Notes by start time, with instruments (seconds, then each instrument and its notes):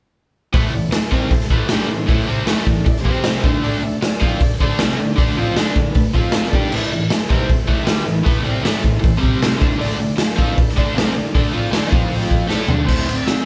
0.53 overdriven electric guitar A2 E3 A3, transistor combo organ E4 A4 C5, kick, open hi-hat
0.71 overdriven electric guitar A2 E3, transistor combo organ E4 A4 D5
0.89 transistor combo organ E4 A4 C5, muted overdriven electric guitar stroke, snare, open hi-hat
1.11 overdriven electric guitar C3 G3 C4, transistor combo organ E4 A4 C5, kick
1.31 transistor combo organ E4 A4 C5, muted overdriven electric guitar stroke, kick, open hi-hat
1.40 snare
1.50 overdriven electric guitar A2 E3 A3, transistor combo organ E4 A4, kick
1.55 transistor combo organ C5
1.69 overdriven electric guitar G2 D3 G3, transistor combo organ E4 A4, snare, open hi-hat
1.74 transistor combo organ D5
1.89 overdriven electric guitar A2 E3, transistor combo organ E4 A4 C5
2.06 overdriven electric guitar A2 E3 A3, transistor combo organ E4, kick, open hi-hat
2.11 transistor combo organ A4 C5
2.24 overdriven electric guitar C3 G3, transistor combo organ E4 A4 C5
2.28 overdriven electric guitar C4
2.45 overdriven electric guitar A2 E3 A3, transistor combo organ E4 A4 C5, snare, open hi-hat
2.64 overdriven electric guitar A2 E3, transistor combo organ E4 A4 D5, kick
2.79 transistor combo organ E4 A4 D5
2.85 overdriven electric guitar A2 E3, kick, open hi-hat
2.96 snare
3.00 transistor combo organ C4 G4 C5
3.05 overdriven electric guitar C3 G3 C4, kick
3.24 snare, open hi-hat
3.41 overdriven electric guitar D3, transistor combo organ E4 A4 C5, kick
3.45 overdriven electric guitar A3 D4
3.62 overdriven electric guitar D3 A3 D4, transistor combo organ D4 A4 D5, open hi-hat
3.81 overdriven electric guitar D3 A3, transistor combo organ D4 A4 E5
4.00 transistor combo organ D4 A4 D5, muted overdriven electric guitar stroke, snare, open hi-hat
4.17 overdriven electric guitar F3, transistor combo organ D4 A4 D5
4.22 overdriven electric guitar C4 F4, kick
4.36 transistor combo organ D4 A4 D5
4.40 muted overdriven electric guitar stroke, kick, open hi-hat
4.58 overdriven electric guitar D3, transistor combo organ D4 A4 C5, kick
4.62 overdriven electric guitar A3 D4
4.77 overdriven electric guitar C3, transistor combo organ D4 A4 D5, snare, open hi-hat
4.81 overdriven electric guitar G3 C4
4.96 transistor combo organ D4 A4 D5
5.00 overdriven electric guitar D3 A3
5.15 overdriven electric guitar D3 A3 D4, transistor combo organ D4 A4 D5, kick, open hi-hat
5.31 transistor combo organ D4 A4 D5
5.37 overdriven electric guitar F3 C4 F4
5.51 transistor combo organ D4 A4 C5
5.56 overdriven electric guitar D3 A3 D4, snare, open hi-hat
5.71 transistor combo organ D4 A4 D5
5.76 overdriven electric guitar D3 A3, kick
5.91 transistor combo organ D4 A4 B4, open hi-hat
5.95 overdriven electric guitar D3 A3, kick
6.13 overdriven electric guitar F3 C4 F4, transistor combo organ C4 F4 C5 F5, kick
6.32 transistor combo organ G5, snare, open hi-hat
6.47 transistor combo organ D4 A4 D5 A5
6.53 overdriven electric guitar G3 D4 G4, kick
6.71 overdriven electric guitar A2 E3 A3, transistor combo organ E4 A4 C5, crash
6.87 transistor combo organ E4 A4 D5
6.92 overdriven electric guitar A2 E3
7.10 transistor combo organ E4 A4 C5, muted overdriven electric guitar stroke, snare, open hi-hat
7.26 overdriven electric guitar C3, transistor combo organ E4 A4 B4, kick
7.31 overdriven electric guitar G3 C4
7.39 transistor combo organ E4 A4 C5
7.48 muted overdriven electric guitar stroke, kick, open hi-hat
7.65 overdriven electric guitar A2 E3, transistor combo organ E4 A4 C5, kick
7.69 overdriven electric guitar A3
7.83 overdriven electric guitar G2 D3 G3, transistor combo organ E4 A4 C5
7.87 snare, open hi-hat
8.02 overdriven electric guitar A2 E3, transistor combo organ E4 A4 B4
8.23 overdriven electric guitar A2 E3 A3, transistor combo organ E4 A4 B4, kick, open hi-hat
8.42 overdriven electric guitar C3 G3 C4, transistor combo organ E4 A4 D5
8.61 overdriven electric guitar A2 E3 A3, transistor combo organ E4 A4 D5, snare
8.65 open hi-hat
8.79 overdriven electric guitar A2 E3
8.83 transistor combo organ E4 A4 C5, kick
8.99 overdriven electric guitar A2 E3, transistor combo organ E4 A4 C5
9.04 kick, open hi-hat
9.17 overdriven electric guitar C3 G3 C4, transistor combo organ C4
9.22 transistor combo organ G4 C5, kick
9.43 snare, open hi-hat
9.56 overdriven electric guitar D3 A3 D4, transistor combo organ E4 A4 C5
9.62 kick
9.78 overdriven electric guitar D3 A3 D4, transistor combo organ D4 A4 D5, open hi-hat
9.98 overdriven electric guitar D3 A3, transistor combo organ D4 A4 D5
10.17 transistor combo organ D4 A4, muted overdriven electric guitar stroke, snare, open hi-hat
10.21 transistor combo organ F5
10.37 overdriven electric guitar F3 C4 F4, transistor combo organ D4 A4 F5, kick
10.55 transistor combo organ D4 A4 B4, muted overdriven electric guitar stroke, kick, open hi-hat
10.69 transistor combo organ A4, snare
10.73 transistor combo organ D4 D5
10.77 overdriven electric guitar D3 A3 D4, kick
10.93 overdriven electric guitar C3 G3, transistor combo organ D4 A4 F5
10.97 overdriven electric guitar C4, snare, open hi-hat
11.13 overdriven electric guitar D3 A3, transistor combo organ D4 A4 D5
11.32 overdriven electric guitar D3 A3 D4, transistor combo organ D4 A4 D5, kick, open hi-hat
11.52 overdriven electric guitar F3 C4 F4, transistor combo organ D4 A4 D5
11.71 overdriven electric guitar D3 A3 D4, transistor combo organ D4 A4 D5, snare, open hi-hat
11.89 overdriven electric guitar F3 C4 F4, transistor combo organ C4 F4, kick
11.93 transistor combo organ C5
12.11 open hi-hat
12.21 snare
12.31 transistor combo organ C4 F4 A4, kick
12.47 overdriven electric guitar A3 E4 A4, transistor combo organ A4 D5, snare
12.52 transistor combo organ D4
12.67 overdriven electric guitar D3 A3 D4, transistor combo organ D4 A4 F5, floor tom
12.85 overdriven electric guitar A3 C4 E4, transistor combo organ A4, harmonica C5, kick, crash
12.89 transistor combo organ E4 C5
13.04 transistor combo organ E4 A4 B4
13.08 overdriven electric guitar A3 C4, ride
13.16 harmonica D5
13.25 overdriven electric guitar A3 C4, transistor combo organ E4 A4 D5, harmonica E5, snare, ride